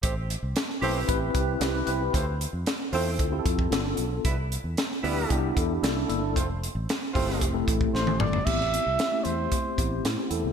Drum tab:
CC |----------------|----------------|----------------|----------------|
HH |x-x-x-o-x-x-x-x-|x-x-x-o-x-x-x-x-|x-x-x-o-x-x-x-x-|x-x-x-o-x-x-----|
SD |----oo------o---|----o-------o---|----oo------o---|----oo-o----o---|
T1 |----------------|----------------|----------------|-------------o--|
T2 |----------------|----------------|----------------|--------------o-|
FT |----------------|----------------|----------------|---------------o|
BD |o-------o-o-----|o-------o-oo----|o-------o-o-----|o-----o-o-oo----|

CC |x---------------|
HH |--x-x-x-x-x-x-x-|
SD |-o--o-------o---|
T1 |----------------|
T2 |----------------|
FT |----------------|
BD |o-------o-o-----|